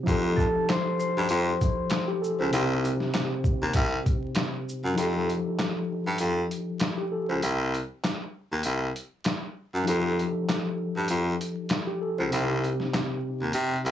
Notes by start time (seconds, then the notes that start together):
0.03 F3 D#4, kick
0.08 F2 G4 A4, closed hi-hat
0.36 A4 A5, kick, shaker
0.69 C5 C6, finger snap, snare, clap, closed hi-hat
0.99 C5 C6, shaker
1.17 G2
1.29 F2, closed hi-hat
1.61 kick, closed hi-hat, shaker
1.90 finger snap, snare, clap, closed hi-hat
2.08 G4
2.22 A4, shaker
2.39 C#2 C5
2.49 C2 C3 C4, closed hi-hat
2.54 D#4 G4
2.85 closed hi-hat, shaker
3.00 snare
3.14 finger snap, snare, clap, closed hi-hat
3.44 kick, shaker
3.62 D#2
3.74 C2, kick, closed hi-hat
4.06 kick, closed hi-hat, shaker
4.35 finger snap, snare, clap, closed hi-hat
4.69 shaker
4.85 F#2
4.93 F3 D#4
4.98 F2 G4 A4, closed hi-hat
5.30 closed hi-hat
5.59 snare, clap, closed hi-hat
6.07 G2
6.18 F2, closed hi-hat
6.51 closed hi-hat
6.80 snare, clap, closed hi-hat
6.97 G4
7.12 A4
7.29 C#2 C5
7.42 C2, closed hi-hat
7.74 closed hi-hat
8.04 snare, clap, closed hi-hat
8.52 D#2
8.63 C2, closed hi-hat
8.96 closed hi-hat
9.24 snare, clap, closed hi-hat
9.75 F#2
9.83 F3 D#4
9.87 F2 G4 A4, closed hi-hat
10.19 closed hi-hat
10.49 snare, clap, closed hi-hat
10.97 G2
11.08 F2, closed hi-hat
11.41 closed hi-hat
11.69 snare, clap, closed hi-hat
11.87 G4
12.01 A4
12.18 C#2 C5
12.29 C2 C3 C4, closed hi-hat
12.33 D#4 G4
12.64 closed hi-hat
12.80 snare
12.94 snare, clap, closed hi-hat
13.42 D#2
13.53 C3, closed hi-hat
13.85 C2, closed hi-hat